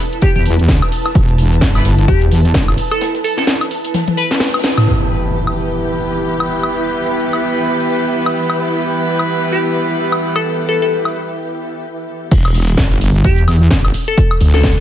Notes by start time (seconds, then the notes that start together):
Already playing: E4 B4 A5
0.13 closed hi-hat, shaker
0.22 G4, kick, closed hi-hat, shaker
0.36 E2 G4, closed hi-hat
0.45 closed hi-hat, open hi-hat, shaker
0.59 closed hi-hat, shaker
0.68 kick, snare, closed hi-hat, shaker
0.82 closed hi-hat, high woodblock
0.92 closed hi-hat, open hi-hat, shaker
1.05 snare, closed hi-hat, high woodblock, shaker
1.15 E1, kick, closed hi-hat, shaker
1.29 closed hi-hat
1.38 closed hi-hat, open hi-hat, shaker
1.52 closed hi-hat, shaker
1.61 G1, kick, snare, closed hi-hat, shaker
1.75 G3 B3 E4 B4, snare, closed hi-hat, high woodblock
1.85 closed hi-hat, open hi-hat, shaker
1.99 closed hi-hat, shaker
2.08 E2 G4, kick, closed hi-hat, shaker
2.22 closed hi-hat
2.31 E2, closed hi-hat, open hi-hat, shaker
2.45 closed hi-hat, shaker
2.54 G1, kick, snare, closed hi-hat, shaker
2.68 closed hi-hat, high woodblock
2.77 closed hi-hat, open hi-hat, shaker
2.91 A4, closed hi-hat, high woodblock, shaker
3.01 snare, closed hi-hat, shaker
3.14 snare, closed hi-hat
3.24 A4, closed hi-hat, open hi-hat, shaker
3.38 A4, snare, closed hi-hat, shaker
3.47 snare, closed hi-hat, shaker
3.61 closed hi-hat, high woodblock
3.71 open hi-hat, shaker
3.84 closed hi-hat, shaker
3.94 snare, closed hi-hat, high tom, shaker
4.07 snare, closed hi-hat, high tom
4.17 B4, closed hi-hat, open hi-hat, shaker
4.31 snare, closed hi-hat, shaker
4.40 snare, closed hi-hat, shaker
4.47 snare, closed hi-hat
4.54 snare, closed hi-hat, high woodblock
4.59 snare, closed hi-hat
4.63 snare, closed hi-hat, open hi-hat, shaker
4.78 snare, closed hi-hat, mid tom, high woodblock, shaker
4.87 E3 G3 B3 E4 G4 B4, impact
5.14 E5
5.47 high woodblock
5.61 B4
6.40 high woodblock
6.63 high woodblock
7.33 high woodblock
8.26 high woodblock
8.50 high woodblock
8.59 G3 B3 E4 B4
9.19 high woodblock
9.52 G4
10.12 high woodblock
10.36 A4, high woodblock
10.69 A4
10.82 A4
11.05 high woodblock
12.31 E1, kick, closed hi-hat, crash, shaker
12.45 closed hi-hat, high woodblock
12.55 closed hi-hat, open hi-hat, shaker
12.68 closed hi-hat, shaker
12.78 G1, kick, snare, closed hi-hat, shaker
12.91 snare, closed hi-hat
13.01 closed hi-hat, open hi-hat, shaker
13.15 shaker
13.24 E2 G4, kick, closed hi-hat, shaker
13.38 closed hi-hat
13.48 E2, closed hi-hat, open hi-hat, high woodblock, shaker
13.61 shaker
13.71 G1, kick, snare, closed hi-hat, shaker
13.85 closed hi-hat, high woodblock
13.94 closed hi-hat, open hi-hat, shaker
14.08 A4, closed hi-hat, shaker
14.18 kick, closed hi-hat, shaker
14.31 closed hi-hat, high woodblock
14.41 D2, closed hi-hat, open hi-hat, shaker
14.54 A4, snare, closed hi-hat, shaker
14.64 A4, kick, snare, closed hi-hat, shaker